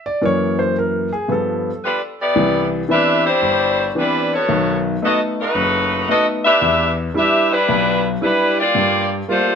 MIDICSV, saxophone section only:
0, 0, Header, 1, 2, 480
1, 0, Start_track
1, 0, Key_signature, 0, "major"
1, 0, Tempo, 532860
1, 200, Time_signature, 4, 2, 24, 8
1, 8604, End_track
2, 0, Start_track
2, 0, Title_t, "Saxophone section"
2, 0, Program_c, 0, 65
2, 1658, Note_on_c, 0, 55, 77
2, 1658, Note_on_c, 0, 62, 73
2, 1659, Note_on_c, 0, 65, 75
2, 1661, Note_on_c, 0, 71, 85
2, 1800, Note_off_c, 0, 55, 0
2, 1800, Note_off_c, 0, 62, 0
2, 1800, Note_off_c, 0, 65, 0
2, 1801, Note_off_c, 0, 71, 0
2, 1984, Note_on_c, 0, 59, 89
2, 1984, Note_on_c, 0, 67, 94
2, 1986, Note_on_c, 0, 74, 98
2, 1987, Note_on_c, 0, 64, 82
2, 2421, Note_off_c, 0, 59, 0
2, 2421, Note_off_c, 0, 67, 0
2, 2422, Note_off_c, 0, 74, 0
2, 2423, Note_off_c, 0, 64, 0
2, 2614, Note_on_c, 0, 62, 103
2, 2614, Note_on_c, 0, 76, 105
2, 2619, Note_on_c, 0, 67, 90
2, 2621, Note_on_c, 0, 71, 94
2, 2908, Note_off_c, 0, 62, 0
2, 2908, Note_off_c, 0, 76, 0
2, 2911, Note_off_c, 0, 67, 0
2, 2911, Note_off_c, 0, 71, 0
2, 2930, Note_on_c, 0, 55, 103
2, 2931, Note_on_c, 0, 62, 102
2, 2932, Note_on_c, 0, 72, 115
2, 2934, Note_on_c, 0, 64, 98
2, 3528, Note_off_c, 0, 55, 0
2, 3529, Note_off_c, 0, 62, 0
2, 3529, Note_off_c, 0, 72, 0
2, 3530, Note_off_c, 0, 64, 0
2, 3585, Note_on_c, 0, 64, 81
2, 3586, Note_on_c, 0, 55, 85
2, 3587, Note_on_c, 0, 62, 84
2, 3587, Note_on_c, 0, 71, 97
2, 3895, Note_off_c, 0, 55, 0
2, 3895, Note_off_c, 0, 64, 0
2, 3896, Note_off_c, 0, 62, 0
2, 3896, Note_off_c, 0, 71, 0
2, 3909, Note_on_c, 0, 59, 82
2, 3909, Note_on_c, 0, 66, 82
2, 3909, Note_on_c, 0, 69, 81
2, 3912, Note_on_c, 0, 73, 93
2, 4343, Note_off_c, 0, 59, 0
2, 4343, Note_off_c, 0, 66, 0
2, 4343, Note_off_c, 0, 69, 0
2, 4345, Note_off_c, 0, 73, 0
2, 4539, Note_on_c, 0, 59, 89
2, 4539, Note_on_c, 0, 75, 101
2, 4541, Note_on_c, 0, 66, 78
2, 4542, Note_on_c, 0, 69, 79
2, 4680, Note_off_c, 0, 59, 0
2, 4680, Note_off_c, 0, 75, 0
2, 4682, Note_off_c, 0, 66, 0
2, 4682, Note_off_c, 0, 69, 0
2, 4860, Note_on_c, 0, 63, 83
2, 4861, Note_on_c, 0, 66, 86
2, 4861, Note_on_c, 0, 71, 98
2, 4863, Note_on_c, 0, 57, 90
2, 5453, Note_off_c, 0, 63, 0
2, 5453, Note_off_c, 0, 66, 0
2, 5453, Note_off_c, 0, 71, 0
2, 5454, Note_off_c, 0, 57, 0
2, 5492, Note_on_c, 0, 59, 87
2, 5492, Note_on_c, 0, 69, 88
2, 5492, Note_on_c, 0, 75, 106
2, 5495, Note_on_c, 0, 66, 89
2, 5634, Note_off_c, 0, 59, 0
2, 5634, Note_off_c, 0, 69, 0
2, 5634, Note_off_c, 0, 75, 0
2, 5636, Note_off_c, 0, 66, 0
2, 5804, Note_on_c, 0, 67, 95
2, 5804, Note_on_c, 0, 71, 96
2, 5805, Note_on_c, 0, 76, 114
2, 5809, Note_on_c, 0, 62, 100
2, 6249, Note_off_c, 0, 67, 0
2, 6249, Note_off_c, 0, 71, 0
2, 6250, Note_off_c, 0, 76, 0
2, 6252, Note_off_c, 0, 62, 0
2, 6454, Note_on_c, 0, 62, 103
2, 6454, Note_on_c, 0, 67, 97
2, 6455, Note_on_c, 0, 76, 109
2, 6458, Note_on_c, 0, 71, 98
2, 6747, Note_off_c, 0, 62, 0
2, 6747, Note_off_c, 0, 67, 0
2, 6747, Note_off_c, 0, 76, 0
2, 6749, Note_off_c, 0, 71, 0
2, 6775, Note_on_c, 0, 55, 89
2, 6777, Note_on_c, 0, 62, 93
2, 6777, Note_on_c, 0, 71, 108
2, 6782, Note_on_c, 0, 64, 98
2, 7249, Note_off_c, 0, 55, 0
2, 7249, Note_off_c, 0, 71, 0
2, 7250, Note_off_c, 0, 62, 0
2, 7252, Note_off_c, 0, 64, 0
2, 7408, Note_on_c, 0, 62, 90
2, 7410, Note_on_c, 0, 55, 90
2, 7411, Note_on_c, 0, 71, 105
2, 7412, Note_on_c, 0, 64, 91
2, 7704, Note_off_c, 0, 62, 0
2, 7705, Note_off_c, 0, 55, 0
2, 7706, Note_off_c, 0, 64, 0
2, 7706, Note_off_c, 0, 71, 0
2, 7738, Note_on_c, 0, 67, 113
2, 7739, Note_on_c, 0, 74, 120
2, 7741, Note_on_c, 0, 58, 107
2, 7741, Note_on_c, 0, 65, 107
2, 8211, Note_off_c, 0, 67, 0
2, 8211, Note_off_c, 0, 74, 0
2, 8212, Note_off_c, 0, 58, 0
2, 8212, Note_off_c, 0, 65, 0
2, 8375, Note_on_c, 0, 57, 86
2, 8377, Note_on_c, 0, 62, 80
2, 8377, Note_on_c, 0, 65, 88
2, 8378, Note_on_c, 0, 72, 100
2, 8604, Note_off_c, 0, 57, 0
2, 8604, Note_off_c, 0, 62, 0
2, 8604, Note_off_c, 0, 65, 0
2, 8604, Note_off_c, 0, 72, 0
2, 8604, End_track
0, 0, End_of_file